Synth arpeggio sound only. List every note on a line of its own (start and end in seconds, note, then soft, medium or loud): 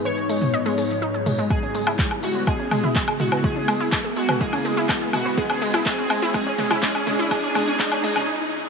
0.05 0.13 B4 medium
0.29 0.34 G#3 medium
0.54 0.57 D#5 loud
0.66 0.69 G#3 loud
0.78 0.81 G#4 medium
1.02 1.07 D#4 loud
1.14 1.19 G#4 medium
1.26 1.31 G#3 medium
1.38 1.46 G#3 medium
1.50 1.53 G#3 medium
1.63 1.68 C#4 medium
1.75 1.80 G#3 medium
1.87 1.92 E4 medium
1.99 2.04 G#3 medium
2.11 2.18 G#4 medium
2.23 2.28 G#3 medium
2.35 2.43 B4 medium
2.47 2.50 G#3 medium
2.59 2.64 C#4 medium
2.71 2.76 G#3 medium
2.84 2.89 E4 medium
2.96 3.01 G#3 medium
3.08 3.15 G#4 medium
3.20 3.25 G#3 medium
3.32 3.39 B4 medium
3.44 3.47 G#3 loud
3.56 3.61 C#4 medium
3.68 3.73 G#3 loud
3.80 3.85 E4 medium
3.92 3.97 G#3 medium
4.05 4.12 G#4 medium
4.17 4.22 G#3 medium
4.29 4.36 B4 medium
4.41 4.44 G#3 loud
4.53 4.58 C#4 medium
4.65 4.70 G#3 medium
4.77 4.82 E4 loud
4.89 4.94 G#3 medium
5.01 5.09 G#4 medium
5.13 5.18 G#3 medium
5.26 5.33 B4 medium
5.38 5.41 G#3 loud
5.50 5.55 C#4 medium
5.62 5.67 G#3 loud
5.74 5.79 E4 loud
5.86 5.89 G#3 loud
5.98 6.03 C#4 medium
6.10 6.15 G#3 loud
6.22 6.27 E4 loud
6.34 6.37 G#3 loud
6.47 6.51 C#4 medium
6.59 6.64 G#3 loud
6.71 6.76 E4 loud
6.83 6.86 G#3 loud
6.95 7.00 C#4 medium
7.07 7.12 G#3 loud
7.19 7.24 E4 loud
7.31 7.34 G#3 loud
7.43 7.48 C#4 medium
7.55 7.58 G#3 loud
7.68 7.72 C#4 medium
7.79 7.83 G#3 loud
7.92 7.97 C#4 medium
8.04 8.07 G#3 loud
8.16 8.21 C#4 medium